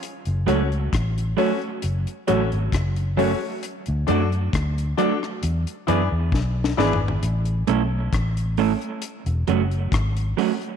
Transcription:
<<
  \new Staff \with { instrumentName = "Upright piano" } { \time 4/4 \key fis \minor \tempo 4 = 67 r8 <cis' fis' a' cis''>16 r8. <cis' fis' a' cis''>16 r8. <cis' fis' a' cis''>16 r8. <cis' fis' a' cis''>16 <a' cis''>16 | r8 <d' fis' a' d''>16 r8. <d' fis' a' d''>16 r8. <e' gis' b' d''>16 r8. <e' gis' b' d''>16 <b' d''>16 | \key a \major r1 | }
  \new Staff \with { instrumentName = "Clean electric guitar" } { \time 4/4 \key fis \minor r8 <fis a cis' fis'>8 r8 <fis a cis' fis'>8 r8 <fis a cis' fis'>8 r8 <fis a cis' fis'>8 | r8 <fis a d' fis'>8 r8 <fis a d' fis'>8 r8 <e b d' gis'>8 r8 <e b d' gis'>8 | \key a \major r8 <a cis' e' a'>8 r8 <a cis' e' a'>8 r8 <fis a cis' fis'>8 r8 <fis a cis' fis'>8 | }
  \new Staff \with { instrumentName = "Fingered electric bass" } { \clef bass \time 4/4 \key fis \minor r16 fis,,16 cis,8 a,,8 r8 fis,,16 r16 a,,16 gis,,16 fis,,8. r16 | r16 d,16 fis,8 d,8 r8 e,16 r16 fis,16 e,16 b,,8 gis,,8 | \key a \major a,,8 b,,8 a,,8. r8 e,,16 fis,,8 gis,,8 r8 | }
  \new DrumStaff \with { instrumentName = "Drums" } \drummode { \time 4/4 hh16 hh16 hh16 hh16 <hh bd ss>16 hh16 hho16 hh16 hh16 hh16 hh16 hh16 <hh bd ss>16 hh16 hho8 | hh16 hh16 hh16 hh16 <hh bd ss>16 hh16 hh16 ss16 hh16 hh16 hh8 \tuplet 3/2 { <bd sn>16 r16 sn16 sn16 tomfh16 tomfh16 } | hh16 hh16 hh8 <hh bd ss>16 hh16 hho16 hh16 hh16 hh16 hh16 hh16 <hh bd ss>16 hh16 hho16 hh16 | }
>>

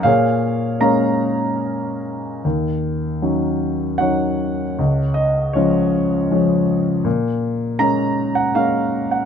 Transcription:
<<
  \new Staff \with { instrumentName = "Grand piano" } { \time 3/4 \key bes \minor \tempo 4 = 78 << { f''4 bes''4 r4 | r2 ges''4~ | ges''8 ees''8 des''4. r8 | r4 bes''8. ges''16 f''8. ges''16 | } \\ { <aes' des''>4 <des'' f''>4. r8 | r2 des''4~ | des''8 r8 f'4. r8 | r2. | } >> }
  \new Staff \with { instrumentName = "Grand piano" } { \clef bass \time 3/4 \key bes \minor bes,4 <aes bes des'>2 | ees,4 <ges des' ees'>4 <ges des' ees'>4 | des,4 <f aes des'>4 <f aes des'>4 | bes,4 <aes bes des'>4 <aes bes des'>4 | }
>>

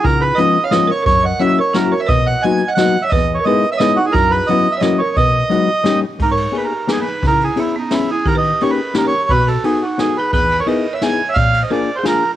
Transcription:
<<
  \new Staff \with { instrumentName = "Bandoneon" } { \time 3/4 \key b \major \tempo 4 = 175 ais'8 b'8 dis''8. eis''16 dis''8 cis''8 | cis''8 fis''8 e''8 cis''8 ais'8 cis''16 e''16 | dis''8 fis''8 gis''8. fis''16 fis''8. e''16 | dis''8. cis''16 dis''8. e''16 dis''8 fis'16 gis'16 |
ais'8 b'8 dis''8. e''16 dis''8 cis''8 | dis''2~ dis''8 r8 | \key e \lydian ais'16 cis''8. b'16 ais'8. gis'16 b'8. | ais'8 gis'8 e'8 dis'8 e'8 gis'8 |
ais'16 dis''8. cis''16 b'8. ais'16 cis''8. | b'8 a'8 gis'8 fis'8 gis'8 b'8 | b'8. cis''16 dis''8. e''16 gis''8. e''16 | eis''8. dis''16 d''8. bis'16 ais'8. r16 | }
  \new Staff \with { instrumentName = "Marimba" } { \time 3/4 \key b \major eis'8 gis'8 b'8. cis''16 b'8 ais'8 | ais'8 dis''8 cis''8 ais'8 fis'8 ais'16 cis''16 | b'8 dis''8 dis''8. dis''16 dis''8. cis''16 | b'8. ais'16 b'8. cis''16 b'8 dis'16 e'16 |
fis'8 gis'8 b'8. cis''16 ais'8 ais'8 | b'2~ b'8 r8 | \key e \lydian dis'16 ais'8. gis'16 g'8. dis'16 gis'8. | e'8 e'8 cis'8 b8 cis'8 e'8 |
g'16 b'8. ais'16 gis'8. g'16 ais'8. | fis'8 fis'8 dis'8 dis'8 dis'8 gis'8 | gis'8. ais'16 b'8. cis''16 e''8. cis''16 | d''8. bis'16 ais'8. gis'16 eis'8. r16 | }
  \new Staff \with { instrumentName = "Hollow-body jazz guitar" } { \time 3/4 \key b \major cis4 <eis gis b cis' eis'>8 r8 <eis gis b cis' eis'>8 r8 | fis,4 <fis ais cis' e' fis'>8 r8 <fis ais cis' e' fis'>8 r8 | b,4 <fis ais b dis' fis'>8 r8 <fis ais b dis' fis'>8 r8 | e,4 <gis b dis' e' gis'>8 r8 <gis b dis' e' gis'>8 r8 |
fis,4 <fis b cis' e' fis'>8 r8 <fis ais cis' e' fis'>8 r8 | b,4 <fis gis b dis' fis'>8 r8 <g ais cis' dis' g'>8 r8 | \key e \lydian gis,4 <ais b dis' gis'>8 r8 <ais b dis' gis'>8 r8 | cis4 <b cis' e' gis'>8 r8 <b cis' e' gis'>8 r8 |
dis4 <ais cis' dis' g'>8 r8 <ais cis' dis' g'>8 r8 | b,4 <b dis' fis' a'>8 r8 <b dis' fis' a'>8 r8 | e,4 <b dis' e' gis'>8 r8 <b dis' e' gis'>8 r8 | ais,4 <ais d' eis' gis'>8 r8 <ais d' eis' gis'>8 r8 | }
  \new DrumStaff \with { instrumentName = "Drums" } \drummode { \time 3/4 <hh bd>4 hh4 <hh sn>4 | <hh bd>4 hh4 <hh sn>4 | <hh bd>4 hh4 <hh sn>4 | <hh bd>4 hh4 <hh sn>4 |
<hh bd>4 hh4 <hh sn>4 | <hh bd>4 hh4 <hh sn>4 | <bd cymr>8 cymr8 cymr4 <cymr sn>4 | <bd cymr>8 cymr8 cymr4 <cymr sn>4 |
<bd cymr>8 cymr8 cymr4 <cymr sn>4 | <bd cymr>8 cymr8 cymr4 <cymr sn>4 | <bd cymr>8 cymr8 cymr4 <cymr sn>4 | <bd cymr>8 cymr8 cymr4 <cymr sn>4 | }
>>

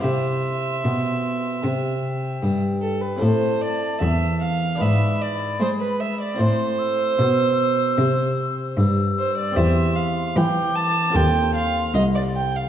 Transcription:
<<
  \new Staff \with { instrumentName = "Flute" } { \time 4/4 \key a \minor \tempo 4 = 76 c'''2 g''2 | a''4. r8 b''2 | c'''8 e'''2~ e'''8 e'''4 | \key f \major c'''4 d'''4 c'''4. r8 | }
  \new Staff \with { instrumentName = "Violin" } { \time 4/4 \key a \minor e''2.~ e''16 r16 a'16 b'16 | c''8 d''8 e''8 f''8 e''8 d''8 c''16 b'16 e''16 d''16 | c''2.~ c''16 r16 c''16 d''16 | \key f \major e''8 f''8 g''8 a''8 g''8 f''8 ees''16 d''16 g''16 f''16 | }
  \new Staff \with { instrumentName = "Harpsichord" } { \time 4/4 \key a \minor <c' e' g'>1 | <c' e' a'>2 <d' e' b'>2 | <c' e' c''>1 | \key f \major <c' g' c''>2 <c' f' a'>2 | }
  \new Staff \with { instrumentName = "Harpsichord" } { \clef bass \time 4/4 \key a \minor c4 b,4 c4 g,4 | a,4 e,4 gis,4 gis4 | a,4 b,4 c4 g,4 | \key f \major e,4 e4 ees,4 c,4 | }
  \new Staff \with { instrumentName = "Cello" } { \clef bass \time 4/4 \key a \minor c4 b,4 c4 g,4 | a,4 e,4 gis,4 gis4 | a,4 b,4 c4 g,4 | \key f \major e,4 e4 ees,4 c,4 | }
>>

